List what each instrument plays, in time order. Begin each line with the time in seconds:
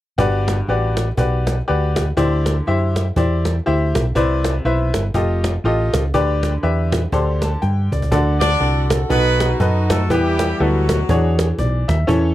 0.18 fingered electric bass G1, upright piano G2 F#4 G4 B4 D5, cajon bass
0.48 cajon slap
0.67 fingered electric bass A1, upright piano F#4 G4 B4 D5, cajon slap
0.97 cajon slap
1.17 fingered electric bass B1, upright piano F#4 G4 B4 D5, cajon bass
1.47 cajon slap
1.68 fingered electric bass D2, upright piano F#4 G4 B4 D5, cajon slap
1.96 cajon bass, cajon slap
2.17 fingered electric bass D2, upright piano D3 E4 G4 C5 D5, cajon bass
2.46 cajon slap
2.66 fingered electric bass F#2, upright piano E4 G4 C5 E5, cajon slap
2.96 cajon slap
3.16 fingered electric bass E2, upright piano E4 G4 C5 D5, cajon bass
3.45 cajon slap
3.66 fingered electric bass D2, upright piano E4 G4 C5 E5, cajon slap
3.95 fingered electric bass B1, cajon bass, cajon slap
4.15 fingered electric bass C2, upright piano C3 E4 B4 C5 D5, cajon bass
4.44 cajon slap
4.65 fingered electric bass B1, upright piano E4 B4 C5 E5, cajon slap
4.94 fingered electric bass G1, cajon slap
5.14 fingered electric bass F1, upright piano F4 G4 A4 D#5, cajon bass
5.44 cajon slap
5.64 fingered electric bass A1, upright piano F4 G4 A4 D#5, cajon slap
5.93 fingered electric bass C#2, cajon bass, cajon slap
6.14 fingered electric bass D2, upright piano D3 D4 G4 B4 D5, cajon bass
6.43 cajon slap
6.63 fingered electric bass E2, upright piano D4 G4 B4 E5, cajon slap
6.92 cajon bass, cajon slap
7.12 fingered electric bass D2, upright piano D3 D4 G4 A4 C5, cajon bass
7.42 upright piano A5, cajon slap
7.62 fingered electric bass G2, upright piano G5, cajon slap
7.92 fingered electric bass C#2, upright piano D5, cajon bass
8.02 cajon bass
8.11 fingered electric bass D2, upright piano D3 D4 F#4 A4 D5, cajon bass
8.40 horn section D4 F#4 A4 D5, cajon slap
8.60 fingered electric bass C2, upright piano D4 F#4 A4 D5, cajon slap
8.90 cajon bass, cajon slap
9.09 fingered electric bass B1, upright piano B2 D#4 F#4 A4 B4, horn section B3 D#4 F#4 B4, cajon bass
9.40 cajon slap
9.60 fingered electric bass F#2, upright piano D#4 F#4 A4 B4, cajon bass
9.90 horn section A3 A4, cajon bass, cajon slap
10.10 fingered electric bass E2, upright piano E3 B3 E4 G4 B4, horn section G3 B3 E4 G4, cajon bass
10.39 cajon slap
10.59 fingered electric bass D2, horn section F#3 B3 F#4, upright piano G3 B3 E4 A4, cajon slap
10.89 cajon bass, cajon slap
11.09 fingered electric bass E2, upright piano E3 D4 F#4 G#4 C#5, cajon bass
11.39 cajon slap
11.58 fingered electric bass B1, upright piano D5, cajon bass
11.88 fingered electric bass D#2, upright piano E5, cajon bass, cajon slap
12.07 fingered electric bass E2, upright piano E3 C#4 E4 A4 C#5, cajon bass